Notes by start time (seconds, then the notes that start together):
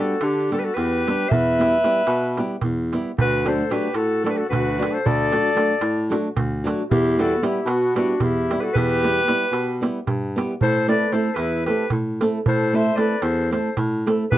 Already playing: G3 B3 D4
0.00 F#4 G4 A4
0.21 D3 D4 G4, darbuka tek
0.51 G3 B3 D4 F#4 G4 A4, darbuka tek
0.58 G4 B4
0.65 F#4 A4
0.75 E2 G4 B4, darbuka tek
1.07 G3 B3 D4 G4, darbuka tek
1.29 E2 B4 E5, darbuka dum
1.46 darbuka tek
1.59 G3 B3 E4 G4, darbuka tek
1.73 darbuka tek
1.84 G3 B3 E4 G4, darbuka tek
1.96 darbuka tek
2.07 B2, darbuka tek
2.22 darbuka tek
2.37 G3 B3 E4 G4, darbuka tek
2.50 darbuka tek
2.61 E2, darbuka tek, darbuka dum
2.92 G3 B3 E4 G4, darbuka tek
3.06 darbuka tek
3.18 D2 F#4 B4, darbuka dum
3.32 darbuka tek
3.45 F#3 A3 D4 F#4 A4 C5, darbuka tek
3.58 darbuka tek
3.70 F#3 A3 D4 F#4 G4 B4, darbuka tek
3.83 darbuka tek
3.94 A2 F#4 A4, darbuka tek
4.11 darbuka tek
4.24 F#3 A3 D4 F#4 A4, darbuka tek
4.30 G4 B4
4.37 F#4 A4, darbuka tek
4.49 D2 F#4 B4, darbuka tek, darbuka dum
4.77 F#3 A3 D4 F#4
4.82 darbuka tek
4.92 A4 C5
5.03 D2 A4 D5, darbuka dum
5.19 darbuka tek
5.32 F#3 A3 D4 F#4, darbuka tek
5.44 darbuka tek
5.55 F#3 A3 D4 F#4, darbuka tek
5.69 darbuka tek
5.81 A2, darbuka tek
5.96 darbuka tek
6.10 F#3 A3 D4 F#4, darbuka tek
6.25 darbuka tek
6.36 D2, darbuka tek, darbuka dum
6.64 F#3 A3 D4 F#4, darbuka tek
6.91 E2 E4 G4, darbuka dum
7.06 darbuka tek
7.18 G3 B3 E4 F#4 G4 A4, darbuka tek
7.32 darbuka tek
7.42 G3 B3 E4 G4, darbuka tek
7.55 darbuka tek
7.65 B2 B3 F#4, darbuka tek
7.83 darbuka tek
7.95 G3 B3 D4 E4 F#4 G4, darbuka tek
8.09 darbuka tek
8.20 E2 E4 G4, darbuka tek, darbuka dum
8.51 G3 B3 E4 G4, darbuka tek
8.60 G4 A4 B4
8.65 F#4
8.74 E2 G4 B4, darbuka dum
9.04 G3 B3 E4 G4, darbuka tek
9.28 G3 B3 E4 G4, darbuka tek
9.52 B2, darbuka tek
9.67 darbuka tek
9.81 G3 B3 E4 G4, darbuka tek
10.07 G2, darbuka tek, darbuka dum
10.36 G3 B3 E4 G4, darbuka tek
10.51 darbuka tek
10.61 A2 A4 C5, darbuka dum
10.75 darbuka tek
10.88 A3 C4 E4 A4 B4 D5, darbuka tek
11.02 darbuka tek
11.12 A3 C4 E4 A4 C5, darbuka tek
11.24 darbuka tek
11.34 E2 E4 B4, darbuka tek
11.51 darbuka tek
11.66 A3 C4 E4 G4 A4 B4, darbuka tek
11.78 darbuka tek
11.90 A2, darbuka tek, darbuka dum
12.21 A3 C4 E4 A4, darbuka tek
12.46 A2 A4 C5, darbuka dum
12.59 darbuka tek
12.73 A3 C4 E4 A4 C5 E5
12.86 darbuka tek
12.96 A3 C4 E4 A4 D5, darbuka tek
13.00 B4
13.10 darbuka tek
13.22 E2 A4 C5, darbuka tek
13.38 darbuka tek
13.51 A3 C4 E4 A4 C5, darbuka tek
13.65 darbuka tek
13.77 A2, darbuka tek, darbuka dum
14.06 A3 C4 E4 A4, darbuka tek
14.31 E2 G4 B4, darbuka dum